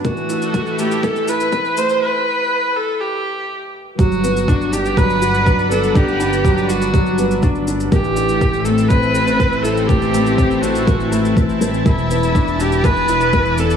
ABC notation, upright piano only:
X:1
M:4/4
L:1/8
Q:1/4=122
K:G
V:1 name="Upright piano"
E, E E, A, E, E E, A, | z8 | F, B, D D F, F F, B, | D D F, F F, B, D D |
E, E E, A, C C E, E | E, A, C C E, A, E, E, | E, B, D D E, E E, B, |]